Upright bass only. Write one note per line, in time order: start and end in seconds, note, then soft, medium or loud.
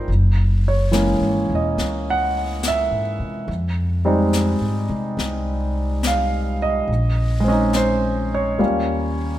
0.08 1.18 F#1 medium
1.20 1.47 G#1 soft
1.50 1.76 E1 medium
1.77 2.87 C#2 medium
2.91 3.18 G#2 soft
3.19 3.46 C3 soft
3.48 4.57 F2 medium
4.60 4.87 G#2 soft
4.89 5.16 C3 medium
5.17 6.84 C2 medium
6.88 8.55 A#1 medium
8.59 9.39 D#2 medium